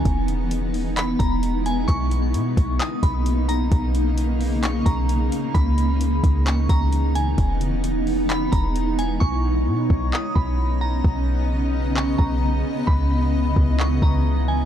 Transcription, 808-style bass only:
X:1
M:4/4
L:1/8
Q:1/4=131
K:B
V:1 name="808-style bass" clef=bass
E,,,4- E,,, E,,,3 | B,,,2 B,, B,,, z B,,,3 | B,,,4- B,,, B,,,2 z | C,,3 C,,2 C,,3 |
E,,,4- E,,, E,,,3 | B,,,2 B,, B,,, z B,,,3 | B,,,4- B,,, B,,,2 z | C,,3 C,,2 C,,3 |]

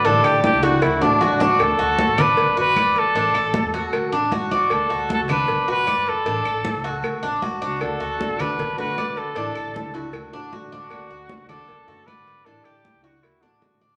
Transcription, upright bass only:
X:1
M:4/4
L:1/16
Q:1/4=155
K:D
V:1 name="Upright bass" clef=bass
A,,,2 z3 C,,3 D,,2 A,,,2 z A,,,3 | D,,2 D,,3 A,,,3 B,,,2 F,,2 z E,,3 | A,,,2 A,,,3 E,,3 D,,2 A,,,2 z A,,,3 | D,,2 D,,3 C,,3 B,,,2 F,,2 z F,,3 |
A,,,2 A,,,3 C,,3 D,,2 A,,,2 B,,,2 C,,2 | D,,2 D,,3 A,,,3 B,,,2 F,,2 z B,,,3 | A,,,2 A,,,3 C,,3 D,,2 A,,,2 z A,,,3 | D,,2 D,,3 C,,3 B,,,2 F,,2 z ^G,,,3 |
A,,,2 A,,,3 C,,3 D,,2 A,,,2 z A,,,3 |]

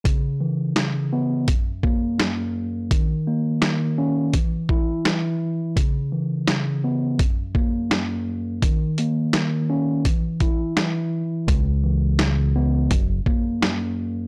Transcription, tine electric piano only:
X:1
M:4/4
L:1/8
Q:"Swing 16ths" 1/4=84
K:C#dor
V:1 name="Tine electric piano" clef=bass
C, E, C, B, F,, A, F,,2 | D, A, D, C E, E E,2 | C, E, C, B, F,, A, F,,2 | D, A, D, C E, E E,2 |
C, E, C, B, F,, A, F,,2 |]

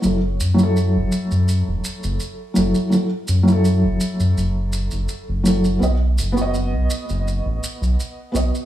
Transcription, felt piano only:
X:1
M:4/4
L:1/16
Q:1/4=83
K:F#dor
V:1 name="Felt piano"
[F,EA] z2 [F,EA]8- [F,EA]3 [F,EA]2 | [F,EA] z2 [F,EA]8- [F,EA]3 [F,EA]2 | [B,Fd] z2 [B,Fd]8- [B,Fd]3 [B,Fd]2 |]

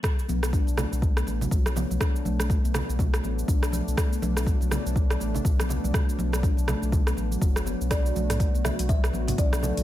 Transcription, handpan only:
X:1
M:4/4
L:1/16
Q:"Swing 16ths" 1/4=122
K:Bm
V:1 name="Handpan"
z2 B, z D z A, z2 B, z F, z2 B, z | D z A, z2 B, z F, z2 B, z D z A, z | z B, z F, z2 B, z D z A, z2 B, z F, | z2 B, z D z A, z2 B, z F, z2 B, z |
D z A, z2 B, z F, z2 B, z D z A, z |]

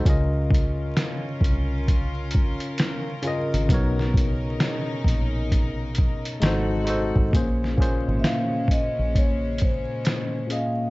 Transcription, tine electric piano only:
X:1
M:4/4
L:1/8
Q:"Swing 16ths" 1/4=66
K:Bbm
V:1 name="Tine electric piano"
[D,DFBe]3 z4 [D,DFBe] | [=B,,=B,^D^A^c]3 z3 [_A,EG=A=c] [_A,EG=Ac] | [B,,B,DAc] [B,,B,DAc]3 z3 [B,,B,DAe] |]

